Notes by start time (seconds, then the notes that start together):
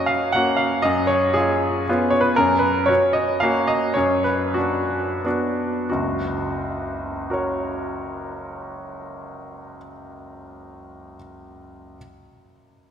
Already playing: C#4 F#4
0.06 F5
0.32 A#3 C#4 F#4 F#5
0.57 F5
0.82 F#2 D#5
1.07 C#5
1.34 C#4 F4 G#4
1.89 B3 C#4 F4
2.10 C#5
2.21 B4
2.36 F#2 A#4
2.59 B4
2.86 C#4 F#4 C#5
3.13 D#5
3.40 A#3 C#4 F#4 F5
3.67 D#5
3.94 F#2 C#5
4.24 B4
4.54 D4 F#4
5.24 B3 D4 F#4
5.90 F#1 C#2 F#4
7.30 F#4 A#4 C#5